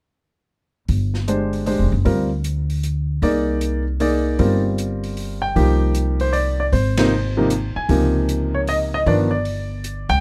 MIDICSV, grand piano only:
0, 0, Header, 1, 2, 480
1, 0, Start_track
1, 0, Tempo, 388954
1, 1101, Time_signature, 3, 2, 24, 8
1, 12593, End_track
2, 0, Start_track
2, 0, Title_t, "Grand piano"
2, 0, Program_c, 0, 0
2, 1573, Note_on_c, 0, 56, 46
2, 1580, Note_on_c, 0, 62, 47
2, 1583, Note_on_c, 0, 67, 45
2, 1589, Note_on_c, 0, 72, 51
2, 2032, Note_off_c, 0, 56, 0
2, 2038, Note_off_c, 0, 62, 0
2, 2044, Note_off_c, 0, 67, 0
2, 2046, Note_off_c, 0, 72, 0
2, 2051, Note_on_c, 0, 56, 52
2, 2057, Note_on_c, 0, 62, 45
2, 2063, Note_on_c, 0, 67, 45
2, 2064, Note_on_c, 0, 72, 57
2, 2337, Note_off_c, 0, 56, 0
2, 2340, Note_off_c, 0, 62, 0
2, 2343, Note_off_c, 0, 67, 0
2, 2343, Note_off_c, 0, 72, 0
2, 2529, Note_on_c, 0, 55, 47
2, 2531, Note_on_c, 0, 60, 48
2, 2536, Note_on_c, 0, 70, 63
2, 2538, Note_on_c, 0, 65, 44
2, 2816, Note_off_c, 0, 55, 0
2, 2817, Note_off_c, 0, 60, 0
2, 2819, Note_off_c, 0, 70, 0
2, 2820, Note_off_c, 0, 65, 0
2, 3980, Note_on_c, 0, 58, 56
2, 3983, Note_on_c, 0, 63, 56
2, 3985, Note_on_c, 0, 68, 46
2, 3990, Note_on_c, 0, 74, 61
2, 4711, Note_off_c, 0, 58, 0
2, 4712, Note_off_c, 0, 63, 0
2, 4713, Note_off_c, 0, 68, 0
2, 4715, Note_off_c, 0, 74, 0
2, 4937, Note_on_c, 0, 58, 54
2, 4942, Note_on_c, 0, 63, 56
2, 4944, Note_on_c, 0, 68, 53
2, 4952, Note_on_c, 0, 74, 61
2, 5418, Note_on_c, 0, 55, 54
2, 5421, Note_on_c, 0, 60, 52
2, 5426, Note_on_c, 0, 65, 45
2, 5430, Note_on_c, 0, 70, 58
2, 5669, Note_off_c, 0, 58, 0
2, 5671, Note_off_c, 0, 63, 0
2, 5672, Note_off_c, 0, 68, 0
2, 5676, Note_off_c, 0, 74, 0
2, 6685, Note_on_c, 0, 79, 82
2, 6760, Note_off_c, 0, 55, 0
2, 6761, Note_off_c, 0, 60, 0
2, 6764, Note_off_c, 0, 65, 0
2, 6766, Note_off_c, 0, 70, 0
2, 6853, Note_on_c, 0, 58, 51
2, 6854, Note_on_c, 0, 53, 60
2, 6859, Note_on_c, 0, 63, 55
2, 6866, Note_on_c, 0, 67, 69
2, 7292, Note_off_c, 0, 79, 0
2, 7662, Note_on_c, 0, 72, 73
2, 7808, Note_on_c, 0, 74, 75
2, 7831, Note_off_c, 0, 72, 0
2, 8105, Note_off_c, 0, 74, 0
2, 8143, Note_on_c, 0, 74, 64
2, 8197, Note_off_c, 0, 58, 0
2, 8198, Note_off_c, 0, 53, 0
2, 8200, Note_off_c, 0, 63, 0
2, 8204, Note_off_c, 0, 67, 0
2, 8205, Note_off_c, 0, 74, 0
2, 8302, Note_on_c, 0, 72, 70
2, 8600, Note_off_c, 0, 72, 0
2, 8613, Note_on_c, 0, 48, 59
2, 8615, Note_on_c, 0, 53, 54
2, 8616, Note_on_c, 0, 58, 55
2, 8618, Note_on_c, 0, 72, 77
2, 8628, Note_on_c, 0, 63, 68
2, 8765, Note_off_c, 0, 48, 0
2, 8767, Note_off_c, 0, 53, 0
2, 8767, Note_off_c, 0, 58, 0
2, 8773, Note_off_c, 0, 63, 0
2, 9096, Note_on_c, 0, 48, 66
2, 9101, Note_on_c, 0, 53, 56
2, 9104, Note_on_c, 0, 58, 60
2, 9105, Note_on_c, 0, 63, 66
2, 9247, Note_off_c, 0, 48, 0
2, 9249, Note_off_c, 0, 53, 0
2, 9251, Note_off_c, 0, 58, 0
2, 9252, Note_off_c, 0, 63, 0
2, 9527, Note_off_c, 0, 72, 0
2, 9580, Note_on_c, 0, 80, 83
2, 9739, Note_on_c, 0, 48, 54
2, 9749, Note_on_c, 0, 53, 51
2, 9750, Note_on_c, 0, 58, 55
2, 9750, Note_on_c, 0, 63, 56
2, 10181, Note_off_c, 0, 80, 0
2, 10545, Note_on_c, 0, 73, 75
2, 10607, Note_off_c, 0, 73, 0
2, 10720, Note_on_c, 0, 75, 88
2, 10788, Note_off_c, 0, 75, 0
2, 11036, Note_on_c, 0, 75, 81
2, 11081, Note_off_c, 0, 48, 0
2, 11085, Note_off_c, 0, 53, 0
2, 11086, Note_off_c, 0, 58, 0
2, 11086, Note_off_c, 0, 63, 0
2, 11097, Note_off_c, 0, 75, 0
2, 11185, Note_on_c, 0, 51, 59
2, 11189, Note_on_c, 0, 53, 55
2, 11194, Note_on_c, 0, 59, 55
2, 11198, Note_on_c, 0, 62, 68
2, 11200, Note_on_c, 0, 74, 75
2, 11269, Note_off_c, 0, 74, 0
2, 11465, Note_off_c, 0, 51, 0
2, 11467, Note_off_c, 0, 53, 0
2, 11469, Note_off_c, 0, 59, 0
2, 11471, Note_off_c, 0, 62, 0
2, 11486, Note_on_c, 0, 74, 66
2, 12460, Note_on_c, 0, 79, 100
2, 12480, Note_off_c, 0, 74, 0
2, 12593, Note_off_c, 0, 79, 0
2, 12593, End_track
0, 0, End_of_file